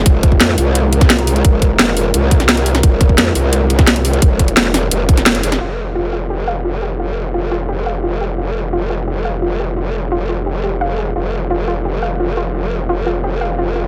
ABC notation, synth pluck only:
X:1
M:4/4
L:1/16
Q:1/4=173
K:Fm
V:1 name="Synth pluck"
z16 | z16 | z16 | z16 |
F2 z2 F2 F2 G2 f2 F z G2 | F2 z2 F2 F2 G2 f2 F z G2 | F2 z2 F2 F2 G2 f2 F z G2 | F2 z2 F2 F2 G2 G z f2 A2 |
F2 z2 F2 F2 G2 f2 F z F z | F2 z2 F2 F2 G2 f2 F z F z |]